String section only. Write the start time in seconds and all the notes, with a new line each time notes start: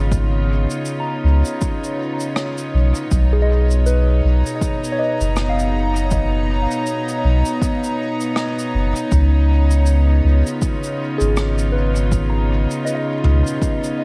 Already playing: C#3 B3 D#4 F4 C#5
3.11 B2
4.19 A#5
9.11 C#3
10.24 F4